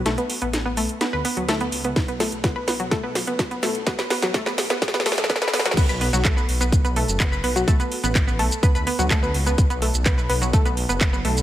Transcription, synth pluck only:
X:1
M:4/4
L:1/16
Q:1/4=126
K:Bm
V:1 name="Synth pluck"
A, B, z B, z B, A, z B, B B, F, A, B, z B, | z B, A, z B, B B, F, A, B, z B, z B, A, z | B, B B, F, A, B, z B, z B, A, z B, B B, F, | [B,B] [Bb] [B,B] [F,F] [A,A] [B,B] z [B,B] z [B,B] [A,A] z [B,B] [Bb] [B,B] [F,F] |
[A,A] [B,B] z [B,B] z [B,B] [A,A] z [B,B] [Bb] [B,B] [F,F] [A,A] [B,B] z [B,B] | z [B,B] [A,A] z [B,B] [Bb] [B,B] [F,F] [A,A] [B,B] z [B,B] z [B,B] [A,A] z |]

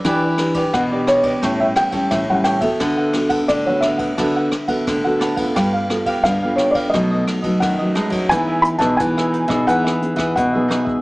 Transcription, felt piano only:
X:1
M:4/4
L:1/16
Q:1/4=87
K:Dlyd
V:1 name="Felt piano"
z4 f2 c3 e =g2 e f g e- | e4 d c e8 z2 | z4 =f2 c d ^d4 ^f4 | [K:E] g2 b a g4 f4 f4 |]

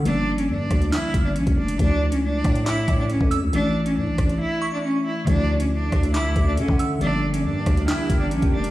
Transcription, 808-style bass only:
X:1
M:4/4
L:1/16
Q:1/4=138
K:Dm
V:1 name="808-style bass" clef=bass
G,,,4 G,,2 D,,2 z2 G,,,2 B,,, G,,, F,,,2 | D,,3 ^C,,3 A,,4 A,,3 F,,2 C,, | A,,,4 A,, A,,, A,,,2 z8 | D,,6 D,,2 ^C,, D,, D,,2 D, D,3 |
G,,,4 G,,2 D,,2 z2 G,,,2 B,,, G,,, F,,,2 |]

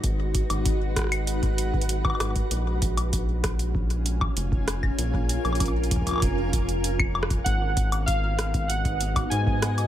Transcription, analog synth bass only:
X:1
M:4/4
L:1/16
Q:1/4=97
K:G#dor
V:1 name="Analog synth bass" clef=bass
G,,,3 G,,,8- G,,,3 G,,, z | A,,,12 E,,,4 | A,,,3 A,,,4- A,,, E,,,8 | G,,,12 G,,4 |]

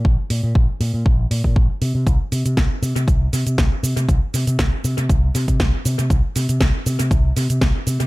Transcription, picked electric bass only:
X:1
M:4/4
L:1/16
Q:"Swing 16ths" 1/4=119
K:Bb
V:1 name="Picked electric bass" clef=bass
B,,, z B,, B,, B,,, z B,, B,, B,,, z B,, B,, B,,, z C, C, | C,, z C, C, C,, z C, C, C,, z C, C, C,, z C, C, | C,, z C, C, C,, z C, C, C,, z C, C, C,, z C, C, | C,, z C, C, C,, z C, C, C,, z C, C, C,, z C, C, |]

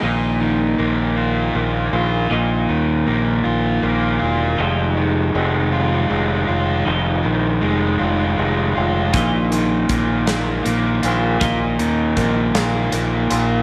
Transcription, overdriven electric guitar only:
X:1
M:6/8
L:1/8
Q:3/8=53
K:Bbdor
V:1 name="Overdriven electric guitar"
B,, E, B, F B, F | B,, E, B, F B, F | F,, E, A, F A, F | F,, E, A, F A, F |
B,, E, B, F B, F | B,, E, B, F B, F |]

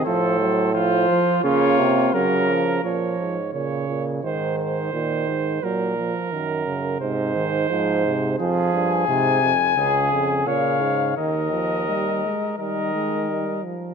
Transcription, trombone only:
X:1
M:4/4
L:1/8
Q:1/4=86
K:Bbm
V:1 name="Trombone" clef=bass
F, G, F,2 B,2 G, F, | F,2 D,2 E,2 E,2 | G, F, E, D, C, E, F, C, | [K:Ebmix] F,2 C, z D,2 D,2 |
E, F, G, A, G, A, G, F, |]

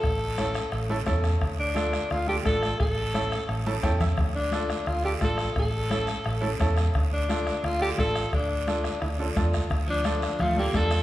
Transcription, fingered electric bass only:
X:1
M:4/4
L:1/8
Q:1/4=174
K:Dm
V:1 name="Fingered electric bass" clef=bass
A,,,4 A,,,2 E,,2 | D,,4 D,,2 A,,,2 | A,,,4 A,,,2 E,,2 | D,,4 D,,2 A,,,2 |
A,,,4 A,,,2 E,,2 | D,,4 D,,2 A,,,2 | D,,4 D,,2 E,, D,, | D,,4 D,,2 E,,2 |]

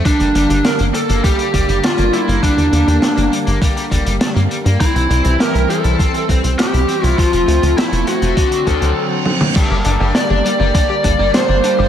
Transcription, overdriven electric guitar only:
X:1
M:4/4
L:1/16
Q:1/4=101
K:Gdor
V:1 name="Overdriven electric guitar" clef=bass
G, G, G, G, D B, G, B, G, G, G, G, D B, G, B, | G, G, G, G, D B, G, B, G, G, G, G, D B, G, B, | C C C C G E C E C C C C G E C E | F, F, F, F, C A, F, A, D, D, D, D, z4 |
[K:Gm] G, G G, G, D D G, G, G, G G, G, D D G, G, |]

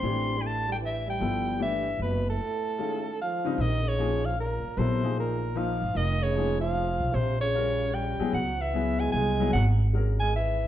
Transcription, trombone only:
X:1
M:3/4
L:1/16
Q:"Swing" 1/4=151
K:Ddor
V:1 name="Trombone" clef=bass
C3- C/2 G,/2 A,2 G,2 E,2 G,2- | G,4 E,4 B,,2 A,,2- | A,,8 F,4 | [K:Dblyd] E,2 D,4 F,2 B,,4 |
C,4 B,,4 F,4 | E,2 D,4 F,6 | C,2 D,6 G,4 | _G,2 _F,4 A,2 A,4 |
_G,2 z4 A,2 _F,4 |]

